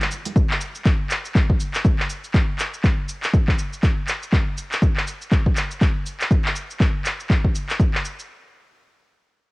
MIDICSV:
0, 0, Header, 1, 2, 480
1, 0, Start_track
1, 0, Tempo, 495868
1, 346, Time_signature, 4, 2, 24, 8
1, 9212, End_track
2, 0, Start_track
2, 0, Title_t, "Drums"
2, 11, Note_on_c, 9, 39, 84
2, 11, Note_on_c, 9, 42, 27
2, 11, Note_on_c, 9, 62, 37
2, 107, Note_off_c, 9, 39, 0
2, 107, Note_off_c, 9, 42, 0
2, 108, Note_off_c, 9, 62, 0
2, 109, Note_on_c, 9, 82, 87
2, 206, Note_off_c, 9, 82, 0
2, 246, Note_on_c, 9, 42, 49
2, 250, Note_on_c, 9, 82, 50
2, 254, Note_on_c, 9, 62, 47
2, 343, Note_off_c, 9, 42, 0
2, 347, Note_off_c, 9, 82, 0
2, 348, Note_on_c, 9, 36, 113
2, 350, Note_on_c, 9, 82, 38
2, 351, Note_off_c, 9, 62, 0
2, 444, Note_off_c, 9, 36, 0
2, 447, Note_off_c, 9, 82, 0
2, 486, Note_on_c, 9, 39, 82
2, 583, Note_off_c, 9, 39, 0
2, 589, Note_on_c, 9, 82, 89
2, 686, Note_off_c, 9, 82, 0
2, 728, Note_on_c, 9, 82, 49
2, 825, Note_off_c, 9, 82, 0
2, 825, Note_on_c, 9, 39, 72
2, 828, Note_on_c, 9, 36, 112
2, 828, Note_on_c, 9, 82, 38
2, 922, Note_off_c, 9, 39, 0
2, 925, Note_off_c, 9, 36, 0
2, 925, Note_off_c, 9, 82, 0
2, 1066, Note_on_c, 9, 39, 84
2, 1070, Note_on_c, 9, 82, 88
2, 1163, Note_off_c, 9, 39, 0
2, 1166, Note_off_c, 9, 82, 0
2, 1212, Note_on_c, 9, 82, 47
2, 1308, Note_on_c, 9, 39, 66
2, 1309, Note_off_c, 9, 82, 0
2, 1309, Note_on_c, 9, 36, 109
2, 1312, Note_on_c, 9, 82, 36
2, 1405, Note_off_c, 9, 39, 0
2, 1406, Note_off_c, 9, 36, 0
2, 1408, Note_off_c, 9, 82, 0
2, 1449, Note_on_c, 9, 36, 76
2, 1546, Note_off_c, 9, 36, 0
2, 1549, Note_on_c, 9, 82, 84
2, 1646, Note_off_c, 9, 82, 0
2, 1686, Note_on_c, 9, 39, 82
2, 1690, Note_on_c, 9, 82, 50
2, 1783, Note_off_c, 9, 39, 0
2, 1786, Note_off_c, 9, 82, 0
2, 1789, Note_on_c, 9, 36, 111
2, 1789, Note_on_c, 9, 82, 36
2, 1886, Note_off_c, 9, 36, 0
2, 1886, Note_off_c, 9, 82, 0
2, 1928, Note_on_c, 9, 39, 78
2, 2025, Note_off_c, 9, 39, 0
2, 2030, Note_on_c, 9, 82, 88
2, 2127, Note_off_c, 9, 82, 0
2, 2170, Note_on_c, 9, 82, 49
2, 2267, Note_off_c, 9, 82, 0
2, 2268, Note_on_c, 9, 39, 69
2, 2269, Note_on_c, 9, 36, 108
2, 2272, Note_on_c, 9, 82, 35
2, 2365, Note_off_c, 9, 39, 0
2, 2366, Note_off_c, 9, 36, 0
2, 2368, Note_off_c, 9, 82, 0
2, 2507, Note_on_c, 9, 39, 81
2, 2510, Note_on_c, 9, 82, 88
2, 2604, Note_off_c, 9, 39, 0
2, 2607, Note_off_c, 9, 82, 0
2, 2650, Note_on_c, 9, 82, 48
2, 2746, Note_on_c, 9, 39, 70
2, 2747, Note_off_c, 9, 82, 0
2, 2748, Note_on_c, 9, 36, 102
2, 2749, Note_on_c, 9, 82, 36
2, 2843, Note_off_c, 9, 39, 0
2, 2845, Note_off_c, 9, 36, 0
2, 2846, Note_off_c, 9, 82, 0
2, 2988, Note_on_c, 9, 82, 85
2, 3085, Note_off_c, 9, 82, 0
2, 3127, Note_on_c, 9, 39, 81
2, 3131, Note_on_c, 9, 82, 43
2, 3224, Note_off_c, 9, 39, 0
2, 3227, Note_off_c, 9, 82, 0
2, 3228, Note_on_c, 9, 36, 101
2, 3232, Note_on_c, 9, 82, 35
2, 3325, Note_off_c, 9, 36, 0
2, 3328, Note_off_c, 9, 82, 0
2, 3367, Note_on_c, 9, 39, 78
2, 3369, Note_on_c, 9, 36, 76
2, 3464, Note_off_c, 9, 39, 0
2, 3466, Note_off_c, 9, 36, 0
2, 3470, Note_on_c, 9, 82, 82
2, 3567, Note_off_c, 9, 82, 0
2, 3612, Note_on_c, 9, 82, 48
2, 3707, Note_on_c, 9, 39, 69
2, 3708, Note_on_c, 9, 36, 104
2, 3709, Note_off_c, 9, 82, 0
2, 3710, Note_on_c, 9, 82, 35
2, 3804, Note_off_c, 9, 39, 0
2, 3805, Note_off_c, 9, 36, 0
2, 3807, Note_off_c, 9, 82, 0
2, 3945, Note_on_c, 9, 39, 84
2, 3948, Note_on_c, 9, 82, 83
2, 4042, Note_off_c, 9, 39, 0
2, 4045, Note_off_c, 9, 82, 0
2, 4093, Note_on_c, 9, 82, 45
2, 4188, Note_on_c, 9, 36, 107
2, 4189, Note_on_c, 9, 39, 71
2, 4190, Note_off_c, 9, 82, 0
2, 4192, Note_on_c, 9, 82, 34
2, 4285, Note_off_c, 9, 36, 0
2, 4286, Note_off_c, 9, 39, 0
2, 4289, Note_off_c, 9, 82, 0
2, 4430, Note_on_c, 9, 82, 84
2, 4527, Note_off_c, 9, 82, 0
2, 4569, Note_on_c, 9, 39, 84
2, 4572, Note_on_c, 9, 82, 47
2, 4666, Note_off_c, 9, 39, 0
2, 4667, Note_on_c, 9, 36, 103
2, 4669, Note_off_c, 9, 82, 0
2, 4670, Note_on_c, 9, 82, 35
2, 4764, Note_off_c, 9, 36, 0
2, 4767, Note_off_c, 9, 82, 0
2, 4807, Note_on_c, 9, 39, 78
2, 4903, Note_off_c, 9, 39, 0
2, 4911, Note_on_c, 9, 82, 79
2, 5008, Note_off_c, 9, 82, 0
2, 5050, Note_on_c, 9, 82, 44
2, 5145, Note_on_c, 9, 39, 69
2, 5146, Note_on_c, 9, 36, 104
2, 5147, Note_off_c, 9, 82, 0
2, 5149, Note_on_c, 9, 82, 34
2, 5242, Note_off_c, 9, 39, 0
2, 5243, Note_off_c, 9, 36, 0
2, 5246, Note_off_c, 9, 82, 0
2, 5288, Note_on_c, 9, 36, 71
2, 5384, Note_off_c, 9, 36, 0
2, 5384, Note_on_c, 9, 39, 80
2, 5387, Note_on_c, 9, 82, 79
2, 5481, Note_off_c, 9, 39, 0
2, 5484, Note_off_c, 9, 82, 0
2, 5527, Note_on_c, 9, 82, 47
2, 5624, Note_off_c, 9, 82, 0
2, 5626, Note_on_c, 9, 39, 71
2, 5627, Note_on_c, 9, 36, 106
2, 5629, Note_on_c, 9, 82, 34
2, 5723, Note_off_c, 9, 39, 0
2, 5724, Note_off_c, 9, 36, 0
2, 5726, Note_off_c, 9, 82, 0
2, 5868, Note_on_c, 9, 82, 78
2, 5964, Note_off_c, 9, 82, 0
2, 6007, Note_on_c, 9, 39, 83
2, 6010, Note_on_c, 9, 82, 45
2, 6104, Note_off_c, 9, 39, 0
2, 6107, Note_off_c, 9, 82, 0
2, 6107, Note_on_c, 9, 36, 106
2, 6112, Note_on_c, 9, 82, 33
2, 6204, Note_off_c, 9, 36, 0
2, 6208, Note_off_c, 9, 82, 0
2, 6245, Note_on_c, 9, 39, 83
2, 6342, Note_off_c, 9, 39, 0
2, 6349, Note_on_c, 9, 82, 83
2, 6446, Note_off_c, 9, 82, 0
2, 6492, Note_on_c, 9, 82, 46
2, 6587, Note_on_c, 9, 36, 106
2, 6587, Note_on_c, 9, 39, 74
2, 6589, Note_off_c, 9, 82, 0
2, 6590, Note_on_c, 9, 82, 34
2, 6684, Note_off_c, 9, 36, 0
2, 6684, Note_off_c, 9, 39, 0
2, 6687, Note_off_c, 9, 82, 0
2, 6827, Note_on_c, 9, 39, 82
2, 6830, Note_on_c, 9, 82, 80
2, 6924, Note_off_c, 9, 39, 0
2, 6927, Note_off_c, 9, 82, 0
2, 6971, Note_on_c, 9, 82, 42
2, 7067, Note_on_c, 9, 36, 102
2, 7068, Note_off_c, 9, 82, 0
2, 7068, Note_on_c, 9, 39, 69
2, 7071, Note_on_c, 9, 82, 33
2, 7164, Note_off_c, 9, 36, 0
2, 7165, Note_off_c, 9, 39, 0
2, 7168, Note_off_c, 9, 82, 0
2, 7208, Note_on_c, 9, 36, 70
2, 7305, Note_off_c, 9, 36, 0
2, 7311, Note_on_c, 9, 82, 80
2, 7408, Note_off_c, 9, 82, 0
2, 7448, Note_on_c, 9, 39, 83
2, 7452, Note_on_c, 9, 82, 47
2, 7545, Note_off_c, 9, 39, 0
2, 7547, Note_on_c, 9, 36, 105
2, 7549, Note_off_c, 9, 82, 0
2, 7550, Note_on_c, 9, 82, 35
2, 7644, Note_off_c, 9, 36, 0
2, 7647, Note_off_c, 9, 82, 0
2, 7687, Note_on_c, 9, 39, 83
2, 7784, Note_off_c, 9, 39, 0
2, 7791, Note_on_c, 9, 82, 78
2, 7888, Note_off_c, 9, 82, 0
2, 7931, Note_on_c, 9, 82, 47
2, 8028, Note_off_c, 9, 82, 0
2, 9212, End_track
0, 0, End_of_file